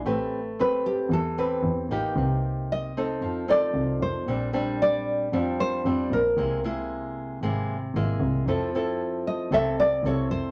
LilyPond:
<<
  \new Staff \with { instrumentName = "Nylon-string guitar" } { \time 4/4 \key c \major \tempo 4 = 114 r4 b'8 g'8 a'4 r4 | r4 ees''4. d''4 c''8~ | c''8 r8 d''4. c''4 bes'8~ | bes'8 r2. r8 |
r4. ees''8 e''8 d''8 des''8 c''8 | }
  \new Staff \with { instrumentName = "Nylon-string guitar" } { \time 4/4 \key c \major << { <c' g' b'>8 r8 <c' g' b'>4 r8 <c' g' b'>4 <bes ees' g'>8~ | <bes ees' g'>4. <c' ees' a'>4 <c' ees' a'>4. | <g c' d'>8 <g c' d'>4. <g c' d'>4 <g c' d'>8 r8 | <gis bes e'>8 <gis bes e'>4. <gis bes e'>8 r8 <gis bes e'>4 |
<c' e' a'>8 <c' e' a'>4. <c' e' a'>8 r8 <c' e' a'>4 | } \\ { a2 e2 | c2 f2 | bes,2 f2 | c2 c2 |
f2 c2 | } >> }
  \new Staff \with { instrumentName = "Double bass" } { \clef bass \time 4/4 \key c \major a,,2 e,4 e,8 a,,8 | c,2 f,4 c,8 f,8 | bes,,2 f,4 f,8 bes,,8 | c,2 gis,,4 gis,,8 c,8 |
f,2 c,4 c,8 f,8 | }
>>